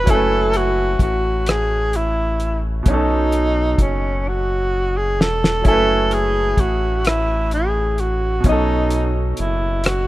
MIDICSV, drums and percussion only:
0, 0, Header, 1, 2, 480
1, 0, Start_track
1, 0, Tempo, 930233
1, 36, Time_signature, 6, 3, 24, 8
1, 5198, End_track
2, 0, Start_track
2, 0, Title_t, "Drums"
2, 37, Note_on_c, 9, 36, 84
2, 37, Note_on_c, 9, 42, 60
2, 88, Note_off_c, 9, 42, 0
2, 89, Note_off_c, 9, 36, 0
2, 276, Note_on_c, 9, 42, 51
2, 328, Note_off_c, 9, 42, 0
2, 513, Note_on_c, 9, 36, 73
2, 516, Note_on_c, 9, 42, 49
2, 565, Note_off_c, 9, 36, 0
2, 567, Note_off_c, 9, 42, 0
2, 756, Note_on_c, 9, 42, 76
2, 769, Note_on_c, 9, 37, 107
2, 807, Note_off_c, 9, 42, 0
2, 820, Note_off_c, 9, 37, 0
2, 997, Note_on_c, 9, 42, 49
2, 1049, Note_off_c, 9, 42, 0
2, 1237, Note_on_c, 9, 42, 39
2, 1289, Note_off_c, 9, 42, 0
2, 1474, Note_on_c, 9, 42, 55
2, 1476, Note_on_c, 9, 36, 92
2, 1526, Note_off_c, 9, 42, 0
2, 1528, Note_off_c, 9, 36, 0
2, 1715, Note_on_c, 9, 42, 54
2, 1767, Note_off_c, 9, 42, 0
2, 1952, Note_on_c, 9, 36, 73
2, 1954, Note_on_c, 9, 42, 45
2, 2004, Note_off_c, 9, 36, 0
2, 2006, Note_off_c, 9, 42, 0
2, 2688, Note_on_c, 9, 38, 76
2, 2739, Note_off_c, 9, 38, 0
2, 2808, Note_on_c, 9, 38, 78
2, 2860, Note_off_c, 9, 38, 0
2, 2914, Note_on_c, 9, 42, 52
2, 2916, Note_on_c, 9, 36, 91
2, 2966, Note_off_c, 9, 42, 0
2, 2967, Note_off_c, 9, 36, 0
2, 3153, Note_on_c, 9, 42, 53
2, 3205, Note_off_c, 9, 42, 0
2, 3392, Note_on_c, 9, 36, 75
2, 3394, Note_on_c, 9, 42, 51
2, 3444, Note_off_c, 9, 36, 0
2, 3445, Note_off_c, 9, 42, 0
2, 3636, Note_on_c, 9, 42, 77
2, 3649, Note_on_c, 9, 37, 100
2, 3688, Note_off_c, 9, 42, 0
2, 3701, Note_off_c, 9, 37, 0
2, 3877, Note_on_c, 9, 42, 46
2, 3928, Note_off_c, 9, 42, 0
2, 4118, Note_on_c, 9, 42, 38
2, 4170, Note_off_c, 9, 42, 0
2, 4355, Note_on_c, 9, 42, 54
2, 4357, Note_on_c, 9, 36, 90
2, 4406, Note_off_c, 9, 42, 0
2, 4408, Note_off_c, 9, 36, 0
2, 4595, Note_on_c, 9, 42, 53
2, 4646, Note_off_c, 9, 42, 0
2, 4835, Note_on_c, 9, 42, 51
2, 4886, Note_off_c, 9, 42, 0
2, 5076, Note_on_c, 9, 42, 81
2, 5089, Note_on_c, 9, 37, 106
2, 5128, Note_off_c, 9, 42, 0
2, 5141, Note_off_c, 9, 37, 0
2, 5198, End_track
0, 0, End_of_file